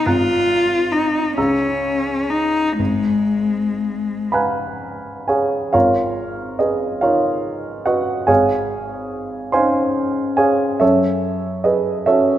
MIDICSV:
0, 0, Header, 1, 3, 480
1, 0, Start_track
1, 0, Tempo, 883652
1, 32, Time_signature, 6, 3, 24, 8
1, 993, Tempo, 964630
1, 1473, Tempo, 1013514
1, 2433, Tempo, 925926
1, 2913, Tempo, 843882
1, 6689, End_track
2, 0, Start_track
2, 0, Title_t, "Grand piano"
2, 0, Program_c, 0, 0
2, 0, Control_c, 0, 64, 127
2, 34, Note_on_c, 0, 32, 33
2, 35, Note_on_c, 0, 90, 24
2, 37, Note_on_c, 0, 82, 26
2, 43, Control_c, 0, 64, 0
2, 150, Control_c, 0, 64, 127
2, 724, Note_off_c, 0, 32, 0
2, 724, Note_off_c, 0, 90, 0
2, 725, Note_off_c, 0, 82, 0
2, 747, Note_on_c, 0, 37, 32
2, 748, Note_on_c, 0, 88, 24
2, 749, Note_on_c, 0, 82, 24
2, 754, Control_c, 0, 64, 0
2, 835, Control_c, 0, 64, 127
2, 1454, Note_off_c, 0, 37, 0
2, 1454, Note_off_c, 0, 88, 0
2, 1455, Note_off_c, 0, 82, 0
2, 1473, Note_on_c, 0, 32, 31
2, 1482, Control_c, 0, 64, 0
2, 1574, Control_c, 0, 64, 127
2, 2196, Note_on_c, 0, 83, 46
2, 2202, Note_on_c, 0, 71, 34
2, 2202, Note_on_c, 0, 77, 34
2, 2203, Note_on_c, 0, 80, 35
2, 2206, Note_on_c, 0, 82, 23
2, 2207, Note_on_c, 0, 90, 23
2, 2657, Note_off_c, 0, 71, 0
2, 2657, Note_off_c, 0, 77, 0
2, 2658, Note_off_c, 0, 80, 0
2, 2670, Note_on_c, 0, 80, 39
2, 2675, Note_off_c, 0, 83, 0
2, 2676, Note_on_c, 0, 73, 30
2, 2676, Note_on_c, 0, 77, 29
2, 2677, Note_on_c, 0, 68, 32
2, 2891, Note_off_c, 0, 32, 0
2, 2893, Note_off_c, 0, 82, 0
2, 2894, Note_off_c, 0, 73, 0
2, 2894, Note_off_c, 0, 77, 0
2, 2894, Note_off_c, 0, 90, 0
2, 2895, Note_off_c, 0, 68, 0
2, 2903, Note_on_c, 0, 77, 53
2, 2908, Note_off_c, 0, 80, 0
2, 2908, Note_on_c, 0, 70, 41
2, 2908, Note_on_c, 0, 73, 38
2, 2909, Note_on_c, 0, 65, 41
2, 2911, Note_on_c, 0, 32, 34
2, 2922, Control_c, 0, 64, 0
2, 3014, Control_c, 0, 64, 127
2, 3379, Note_off_c, 0, 65, 0
2, 3379, Note_off_c, 0, 70, 0
2, 3379, Note_off_c, 0, 73, 0
2, 3393, Note_on_c, 0, 75, 38
2, 3399, Note_off_c, 0, 77, 0
2, 3399, Note_on_c, 0, 68, 30
2, 3399, Note_on_c, 0, 71, 27
2, 3626, Note_off_c, 0, 68, 0
2, 3626, Note_off_c, 0, 71, 0
2, 3633, Note_on_c, 0, 77, 51
2, 3640, Note_off_c, 0, 75, 0
2, 3641, Note_on_c, 0, 73, 37
2, 3642, Note_on_c, 0, 65, 39
2, 3642, Note_on_c, 0, 70, 36
2, 3645, Note_on_c, 0, 63, 27
2, 4099, Note_off_c, 0, 65, 0
2, 4099, Note_off_c, 0, 70, 0
2, 4099, Note_off_c, 0, 73, 0
2, 4113, Note_on_c, 0, 78, 49
2, 4118, Note_off_c, 0, 77, 0
2, 4118, Note_on_c, 0, 75, 39
2, 4119, Note_on_c, 0, 66, 36
2, 4119, Note_on_c, 0, 71, 36
2, 4338, Note_off_c, 0, 32, 0
2, 4338, Note_off_c, 0, 63, 0
2, 4342, Note_off_c, 0, 66, 0
2, 4342, Note_off_c, 0, 71, 0
2, 4342, Note_off_c, 0, 75, 0
2, 4348, Note_on_c, 0, 80, 53
2, 4352, Note_on_c, 0, 68, 42
2, 4353, Note_on_c, 0, 73, 43
2, 4355, Note_on_c, 0, 77, 45
2, 4356, Note_off_c, 0, 78, 0
2, 4356, Note_on_c, 0, 32, 34
2, 4370, Control_c, 0, 64, 0
2, 4462, Control_c, 0, 64, 127
2, 5050, Note_off_c, 0, 68, 0
2, 5050, Note_off_c, 0, 73, 0
2, 5051, Note_off_c, 0, 77, 0
2, 5061, Note_off_c, 0, 80, 0
2, 5062, Note_on_c, 0, 84, 53
2, 5067, Note_on_c, 0, 72, 41
2, 5068, Note_on_c, 0, 77, 41
2, 5069, Note_on_c, 0, 80, 42
2, 5072, Note_on_c, 0, 61, 28
2, 5074, Note_on_c, 0, 63, 29
2, 5530, Note_off_c, 0, 72, 0
2, 5530, Note_off_c, 0, 77, 0
2, 5531, Note_off_c, 0, 80, 0
2, 5542, Note_on_c, 0, 80, 52
2, 5548, Note_on_c, 0, 73, 37
2, 5549, Note_on_c, 0, 68, 39
2, 5550, Note_off_c, 0, 84, 0
2, 5550, Note_on_c, 0, 77, 39
2, 5773, Note_off_c, 0, 32, 0
2, 5773, Note_off_c, 0, 61, 0
2, 5774, Note_off_c, 0, 63, 0
2, 5776, Note_off_c, 0, 73, 0
2, 5777, Note_off_c, 0, 68, 0
2, 5777, Note_off_c, 0, 77, 0
2, 5786, Note_on_c, 0, 76, 51
2, 5791, Note_off_c, 0, 80, 0
2, 5791, Note_on_c, 0, 69, 42
2, 5792, Note_on_c, 0, 73, 43
2, 5795, Note_on_c, 0, 42, 39
2, 5808, Control_c, 0, 64, 0
2, 5909, Control_c, 0, 64, 127
2, 6250, Note_off_c, 0, 69, 0
2, 6250, Note_off_c, 0, 73, 0
2, 6266, Note_on_c, 0, 75, 47
2, 6270, Note_off_c, 0, 76, 0
2, 6271, Note_on_c, 0, 68, 35
2, 6272, Note_on_c, 0, 71, 37
2, 6494, Note_off_c, 0, 68, 0
2, 6495, Note_off_c, 0, 71, 0
2, 6505, Note_on_c, 0, 76, 54
2, 6508, Note_off_c, 0, 75, 0
2, 6511, Note_on_c, 0, 73, 38
2, 6513, Note_on_c, 0, 69, 40
2, 6515, Note_on_c, 0, 61, 29
2, 6516, Note_on_c, 0, 66, 33
2, 6689, Note_off_c, 0, 42, 0
2, 6689, Note_off_c, 0, 61, 0
2, 6689, Note_off_c, 0, 66, 0
2, 6689, Note_off_c, 0, 69, 0
2, 6689, Note_off_c, 0, 73, 0
2, 6689, Note_off_c, 0, 76, 0
2, 6689, End_track
3, 0, Start_track
3, 0, Title_t, "Cello"
3, 0, Program_c, 1, 42
3, 28, Note_on_c, 1, 65, 60
3, 501, Note_on_c, 1, 63, 43
3, 509, Note_off_c, 1, 65, 0
3, 744, Note_off_c, 1, 63, 0
3, 747, Note_on_c, 1, 61, 43
3, 1229, Note_on_c, 1, 63, 42
3, 1237, Note_off_c, 1, 61, 0
3, 1470, Note_off_c, 1, 63, 0
3, 1473, Note_on_c, 1, 56, 41
3, 2188, Note_off_c, 1, 56, 0
3, 6689, End_track
0, 0, End_of_file